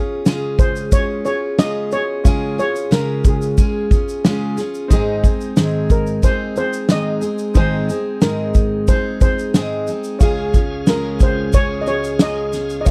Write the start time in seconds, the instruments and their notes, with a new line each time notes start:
Already playing: steel-string acoustic guitar C#4 F4 G#4, grand piano C#4 F4 G#4 F5, steel pan G#4
0.26 steel-string acoustic guitar C#3 G#3 C#4 F4 G#4, snare, shaker
0.59 steel pan C5, kick, shaker
0.76 shaker
0.91 steel-string acoustic guitar G#3 C#4 F4 G#4, steel pan C#5, kick, shaker
1.25 steel-string acoustic guitar C#4 F4 G#4, steel pan C#5, shaker
1.58 steel-string acoustic guitar C#3 G#3 C#4 F4 G#4, steel pan D#5, snare, shaker
1.91 steel-string acoustic guitar C#4 F4 G#4, steel pan C#5, shaker
2.24 steel-string acoustic guitar C#3 G#3 C#4 F4 G#4, grand piano C#4 F4 G#4, kick, shaker
2.28 grand piano G#5
2.58 steel-string acoustic guitar C#4 F4 G#4, steel pan C#5, shaker
2.76 shaker
2.91 steel-string acoustic guitar C#3 G#3 C#4 F4 G#4, steel pan A#4, snare, shaker
3.24 steel pan G#4, kick, shaker
3.42 shaker
3.57 steel-string acoustic guitar G#3 C#4 F4, kick, shaker
3.62 steel-string acoustic guitar G#4
3.91 steel-string acoustic guitar C#4 F4 G#4, kick, shaker
4.09 shaker
4.25 steel-string acoustic guitar C#3 G#3 C#4 F4 G#4, snare, shaker
4.57 steel-string acoustic guitar C#4 F4 G#4, snare, shaker
4.74 shaker
4.88 steel-string acoustic guitar G#2 D#3 G#3 C4, grand piano C4 D#4 G#4 D#5, kick, shaker
4.93 steel-string acoustic guitar D#4 G#4, steel pan G#4
5.24 steel-string acoustic guitar G#3 C4 D#4 G#4, kick, shaker
5.41 shaker
5.56 steel-string acoustic guitar G#2 D#3 G#3 C4 D#4 G#4, snare, shaker
5.90 steel pan A#4, kick, shaker
6.06 shaker
6.22 steel-string acoustic guitar G#3 C4 D#4 G#4, steel pan C5, kick, shaker
6.56 steel-string acoustic guitar G#3 C4 D#4 G#4, steel pan C5, shaker
6.73 shaker
6.89 steel-string acoustic guitar G#2 D#3 G#3 C4 D#4 G#4, steel pan D#5, snare, shaker
7.21 steel-string acoustic guitar G#3 C4 D#4 G#4, shaker
7.38 shaker
7.54 steel-string acoustic guitar G#2 D#3 G#3 C4 D#4 G#4, grand piano C4 D#4 G#4 D#5, steel pan C5, kick, shaker
7.88 steel-string acoustic guitar G#3 C4 D#4 G#4, shaker
8.21 steel-string acoustic guitar G#2 D#3 G#3 C4 D#4 G#4, steel pan A#4, snare, shaker
8.54 kick, shaker
8.87 steel-string acoustic guitar G#3 C4 D#4 G#4, steel pan C5, kick, shaker
9.21 steel-string acoustic guitar C4 D#4 G#4, steel pan C5, kick, shaker
9.25 steel-string acoustic guitar G#3
9.39 shaker
9.54 steel-string acoustic guitar G#2 D#3 G#3 C4 D#4 G#4, snare, shaker
9.87 steel-string acoustic guitar G#3 C4 D#4 G#4, shaker
10.04 shaker
10.19 tonewheel organ C#2 C#3 G#4 F5, steel-string acoustic guitar C#3 G#3 C#4 F4, grand piano C#4 F4 G#4, steel pan G#4, kick, shaker
10.23 steel-string acoustic guitar G#4, grand piano F5
10.54 steel-string acoustic guitar C#4 F4 G#4, kick, shaker
10.87 steel-string acoustic guitar C#3 G#3 C#4 F4 G#4, steel pan A#4, snare, shaker
11.20 steel pan C5, kick, shaker
11.53 steel-string acoustic guitar G#3 C#4 F4 G#4, steel pan C#5, kick, shaker
11.81 steel pan D#5
11.87 steel-string acoustic guitar C#4 F4 G#4, steel pan C#5, shaker
12.04 shaker
12.19 steel-string acoustic guitar C#3 G#3 C#4 F4 G#4, steel pan D#5, snare, shaker
12.53 steel-string acoustic guitar C#4 F4 G#4, snare, shaker
12.69 shaker
12.81 steel pan D#5
12.85 steel-string acoustic guitar C#3, grand piano C#4 F4, kick, shaker